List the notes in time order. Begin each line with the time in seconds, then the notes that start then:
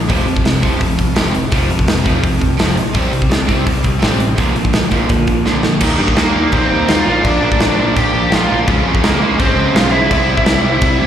0.09 F1 F2 C3 F3, kick, open hi-hat
0.27 F2 C3, open hi-hat
0.37 kick
0.45 F1 F2 C3, snare, open hi-hat
0.63 F1 F2 C3 F3, kick, open hi-hat
0.81 F1 F2 C3, kick, open hi-hat
0.99 F1 F2 C3, kick, open hi-hat
1.16 F1 F2 C3 F3, snare, open hi-hat
1.34 F2 C3, open hi-hat
1.51 F1 F2 C3 F3, kick, open hi-hat
1.69 F1 F2 C3, open hi-hat
1.79 kick
1.87 F1 F2 C3, snare, open hi-hat
2.05 F2 C3 F3, kick, open hi-hat
2.23 F2 C3, kick, open hi-hat
2.41 F2 C3, kick, open hi-hat
2.58 F1 F2 C3 F3, snare, open hi-hat
2.76 A#1 F2 C3, open hi-hat
2.95 C2 C3 G3 C4, kick, open hi-hat
3.12 C3 G3, open hi-hat
3.22 kick
3.30 C2 C3 G3, snare, open hi-hat
3.48 C2 C3 G3 C4, kick, open hi-hat
3.66 C2 C3 G3, kick, open hi-hat
3.84 C2 C3 G3, kick, open hi-hat
4.02 A1 C3 G3 C4, snare, open hi-hat
4.20 C3 G3, open hi-hat
4.38 A#1 A#2 D3 F3 A#3, kick, open hi-hat
4.55 A#1 A#2 D3, open hi-hat
4.65 kick
4.73 A#1 A#2 D3, snare, open hi-hat
4.91 A#2 D3 F3 A#3, kick, open hi-hat
5.09 A#2 D3, kick, open hi-hat
5.27 A#2 D3, kick, open hi-hat
5.45 A#1 A#2 D3 F3, snare
5.63 A#1 A#2 D3, snare
5.81 D#2 D#3 G3 A#3 D#4, kick, crash
5.99 G2 D#3 G3 A#3 D#4
6.08 kick
6.16 D#2 D#3 G3 A#3 D#4 A#4, snare, crash
6.35 D#2 D#3 G3 A#3 D#4
6.52 A#1 D#3 G3 A#3 C4 D#4 C5, kick, crash
6.71 D#2 D#3 G3 A#3 D#4
6.88 D#2 D#3 G3 A#3 D#4 F4 F5, snare, crash
7.06 A#1 A#2 F3 A#3 D4
7.24 A#1 A#2 F3 A#3 D4 D5, kick, crash
7.41 A#1 A#2 F3 A#3 D4
7.52 kick
7.60 A#1 A#2 F3 A#3 D4 D5, snare, crash
7.78 A#1 A#2 F3 A#3 D4
7.95 A#1 A#2 F3 A#3 D4 G4 G5, kick, crash
8.14 A#1 A#2 F3 A#3 D4
8.32 A#1 A#2 F3 A#3 D4 F4 F5, snare, crash
8.50 A#1 A#2 F3 A#3 D4
8.68 C#2 C#3 F3 G#3 C#4, kick, crash
8.86 F2 C#3 F3 G#3 C#4
8.95 kick
9.03 C#2 C#3 F3 G#3 A#3 C#4 A#4, snare, crash
9.21 C#2 C#3 F3 G#3 C#4
9.39 G#1 C#3 F3 G#3 C4 C#4 C5, kick, crash
9.56 C#2 C#3 F3 G#3 C#4
9.74 B1 C#3 F3 G#3 C#4 F4 F5, snare, crash
9.91 C#3 F3 G#3 C#4 E4 E5
10.11 C2 C3 G3 C4 E4, kick, crash
10.28 C2 C3 G3 C4 E4
10.37 kick
10.46 C2 C3 G3 C4 E4, snare, crash
10.64 C2 C3 G3 C4 E4
10.81 C2 C3 G3 C4 E4, kick, crash
10.99 D2 C3 G3 C4 E4